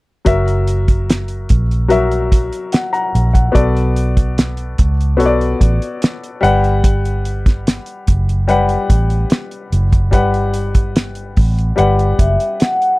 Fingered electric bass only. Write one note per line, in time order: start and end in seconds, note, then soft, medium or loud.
0.27 1.46 F#1 medium
1.51 2.49 A#1 medium
3.15 3.48 A#1 medium
3.56 4.75 B1 medium
4.79 5.19 C#2 medium
5.19 5.53 B1 medium
5.61 5.78 A1 medium
6.43 7.78 G1 medium
8.08 8.75 F#1 medium
8.90 9.24 A1 medium
9.72 10.13 F#1 medium
10.13 11.32 G1 medium
11.38 11.71 A1 medium
11.79 12.12 G1 medium
12.19 12.36 F#1 medium